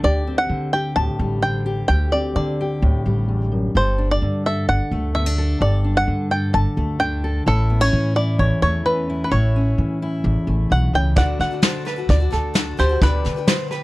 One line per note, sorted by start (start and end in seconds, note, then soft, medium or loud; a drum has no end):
0.00 1.88 D2 medium
0.00 0.45 D2 medium
0.00 0.49 D3 medium
0.00 0.27 D4 soft
0.04 0.73 G4 medium
0.04 0.38 D5 medium
0.27 1.42 C4 soft
0.38 0.73 F#5 medium
0.49 0.91 D3 medium
0.49 1.41 D3 medium
0.73 1.65 G4 medium
0.73 0.95 G5 medium
0.96 1.07 D2 medium
0.96 1.43 A2 medium
0.96 1.39 A5 medium
1.19 1.81 A1 medium
1.19 3.06 G3 soft
1.42 2.35 D3 medium
1.42 1.87 C4 soft
1.42 1.87 G5 medium
1.66 1.89 G4 medium
1.88 3.28 D2 medium
1.88 2.30 D2 medium
1.88 2.60 G4 medium
1.88 2.13 G5 medium
2.12 3.73 C4 soft
2.12 2.34 D5 medium
2.36 2.77 D3 medium
2.36 4.21 D3 medium
2.36 3.25 D5 medium
2.61 3.75 G4 medium
2.82 2.93 D2 medium
2.82 3.75 A2 medium
3.06 3.67 A1 medium
3.06 4.92 G3 soft
3.28 3.51 E2 soft
3.52 3.75 F#2 soft
3.75 4.16 G1 medium
3.75 5.58 G2 medium
3.75 4.46 A4 medium
3.75 4.11 C5 medium
3.98 5.14 D4 soft
4.11 4.43 D5 medium
4.22 4.63 G2 medium
4.22 4.67 D3 medium
4.46 5.38 A4 medium
4.46 4.67 E5 medium
4.68 4.79 G1 medium
4.68 5.14 D3 soft
4.68 5.12 F#5 medium
4.91 5.53 D2 medium
4.91 5.64 A3 soft
5.15 6.06 D3 medium
5.15 5.26 B3 soft
5.15 5.63 E5 medium
5.26 5.61 D4 soft
5.38 5.61 A4 medium
5.61 6.02 G1 medium
5.61 7.44 G2 medium
5.61 6.31 A4 medium
5.61 5.97 D5 medium
5.84 6.99 D4 medium
5.97 6.31 F#5 medium
6.07 6.49 G2 medium
6.07 6.52 D3 soft
6.31 7.24 A4 medium
6.31 6.53 G5 medium
6.53 6.64 G1 medium
6.53 6.98 D3 medium
6.53 6.99 A5 medium
6.77 7.39 D2 medium
6.77 7.73 A3 soft
6.99 7.46 D3 medium
6.99 7.44 D4 soft
6.99 7.48 G5 medium
7.24 7.47 A4 medium
7.46 7.88 A1 medium
7.46 8.39 A2 medium
7.46 8.16 E4 medium
7.46 7.83 A4 medium
7.70 7.81 B3 soft
7.81 8.85 C#4 soft
7.81 8.16 C#5 medium
7.92 8.34 A2 medium
7.92 8.84 E3 medium
8.16 9.08 E4 medium
8.16 8.39 D5 medium
8.39 8.49 A1 medium
8.39 9.29 E2 medium
8.39 8.61 C#5 medium
8.62 9.24 E2 medium
8.62 10.47 A3 medium
8.62 8.84 C#5 medium
8.85 9.29 E3 medium
8.85 9.29 C#4 soft
8.85 9.23 B4 medium
9.10 9.31 E4 medium
9.24 9.32 B4 soft
9.31 9.73 A1 medium
9.31 10.24 A2 medium
9.31 10.01 E4 medium
9.31 10.66 C#5 medium
9.56 11.15 C#4 soft
9.78 10.19 A2 medium
9.78 11.14 E3 medium
10.02 11.17 E4 medium
10.24 10.34 A1 medium
10.24 11.14 E2 medium
10.47 10.68 A1 medium
10.47 11.14 A3 soft
10.70 10.92 B1 medium
10.70 10.93 B2 medium
10.70 10.95 F#5 medium
10.93 11.15 C#2 medium
10.93 11.17 C#3 medium
10.93 11.17 G5 medium
11.16 11.37 D2 medium
11.16 12.98 D2 medium
11.16 11.51 D3 medium
11.16 12.98 D3 medium
11.16 12.98 A3 medium
11.16 11.52 A3 medium
11.16 12.98 D4 medium
11.16 11.52 D4 medium
11.16 12.98 F#4 medium
11.16 11.51 F#4 medium
11.16 11.49 A4 medium
11.16 11.62 D5 medium
11.16 12.98 D5 medium
11.16 11.39 F#5 medium
11.16 kick loud
11.16 snare soft
11.39 12.01 D3 medium
11.39 12.06 F#5 medium
11.39 snare soft
11.51 11.62 D4 soft
11.51 11.62 F#4 soft
11.51 11.62 A4 soft
11.62 11.86 D3 medium
11.62 11.84 A3 medium
11.62 11.84 D4 medium
11.62 11.85 F#4 medium
11.62 11.86 A4 medium
11.62 11.86 C5 medium
11.62 snare loud
11.85 11.97 A3 medium
11.85 11.97 D4 medium
11.85 11.96 F#4 medium
11.85 11.95 A4 medium
11.85 12.32 B4 medium
11.85 snare soft
11.96 12.21 D4 soft
11.96 12.20 F#4 soft
11.96 12.19 A4 medium
12.09 12.30 D2 medium
12.09 12.81 D5 medium
12.09 kick medium
12.09 snare soft
12.20 12.30 D4 soft
12.20 12.31 F#4 soft
12.20 12.32 A4 medium
12.31 12.73 D2 medium
12.31 12.53 A3 medium
12.31 12.54 D4 medium
12.31 12.54 F#4 medium
12.31 12.78 A4 medium
12.31 12.54 A4 medium
12.31 snare soft
12.54 12.78 D3 medium
12.54 12.76 A3 medium
12.54 12.77 D4 medium
12.54 12.78 F#4 medium
12.54 12.78 A4 medium
12.54 snare loud
12.77 12.99 D2 medium
12.77 12.89 A3 medium
12.77 12.90 D4 medium
12.77 12.89 F#4 medium
12.77 13.01 G4 medium
12.77 12.88 A4 medium
12.77 13.01 C5 medium
12.77 snare soft
12.89 13.01 D4 soft
12.89 13.02 F#4 soft
12.89 13.01 A4 medium
13.02 13.22 D2 medium
13.02 13.83 D2 medium
13.02 13.36 D3 medium
13.02 13.83 D3 medium
13.02 13.36 G3 medium
13.02 13.83 B3 medium
13.02 13.83 D4 medium
13.02 13.37 D4 medium
13.02 13.83 G4 medium
13.02 13.83 B4 medium
13.02 13.35 B4 medium
13.02 13.47 D5 medium
13.02 13.83 D5 medium
13.02 kick medium
13.02 snare soft
13.25 13.83 D3 medium
13.25 snare soft
13.36 13.47 D4 soft
13.36 13.47 G4 soft
13.36 13.48 B4 medium
13.47 13.71 D3 medium
13.47 13.70 G3 medium
13.47 13.71 D4 medium
13.47 13.71 G4 medium
13.47 13.72 B4 medium
13.47 13.70 C5 medium
13.47 snare loud
13.71 13.82 G3 medium
13.71 13.83 D4 medium
13.71 13.83 G4 medium
13.71 13.83 B4 medium
13.71 13.81 B4 medium
13.71 snare soft